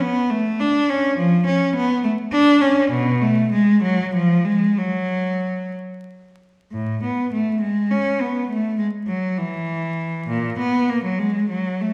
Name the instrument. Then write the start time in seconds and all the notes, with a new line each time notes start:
cello
0.01 B3
0.30 A3
0.60 D4
0.90 C#4
1.17 F3
1.46 C#4
1.76 B3
2.04 A3
2.32 D4
2.61 C#4
2.90 B2
3.21 A3
3.52 G#3
3.83 F#3
4.15 F3
4.45 G#3
4.79 F#3
6.72 A2
7.03 B3
7.33 A3
7.61 G#3
7.91 C#4
8.21 B3
8.50 A3
8.78 G#3
9.07 F#3
9.38 E3
10.28 A#2
10.58 B3
10.89 A#3
11.04 F#3
11.19 G#3
11.50 F#3
11.81 A3